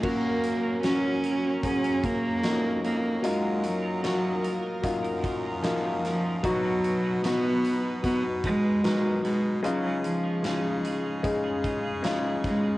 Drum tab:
CC |x---------------|----------------|----------------|----------------|
HH |--x-x-x-xxx-x-x-|x-x-x-x-xxx-x-x-|x-x-x-x-x-x-x-x-|x-x-x-x-x-x-x-x-|
SD |----o-------o---|----o-------o-o-|----o-------o---|----o-------o-o-|
BD |o-------o-o-----|--------o-o-----|o-------o-o-----|--------o-o---o-|